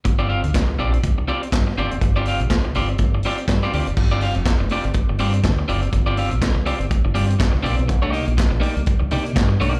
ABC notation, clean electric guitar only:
X:1
M:4/4
L:1/16
Q:"Swing 16ths" 1/4=122
K:Gphr
V:1 name="Clean electric guitar"
z [CFGd] [CFGf] z3 [CFGd] z3 [CFGd] z3 [CFGd] z | z [CFGd] [CFGf] z3 [CFGd] z3 [CFGd] z2 [CFGd] [CFGd] z | z [CFGd] [CFGf] z3 [CFGd] z3 [CFGd] z3 [CFGd] z | z [CFGd] [CFGf] z3 [CFGd] z3 [CFGd] z3 [CFGd] z |
z [B,EGd] [B,EGe] z3 [B,EGd] z3 [B,EGd] z3 [B,EGd]2 |]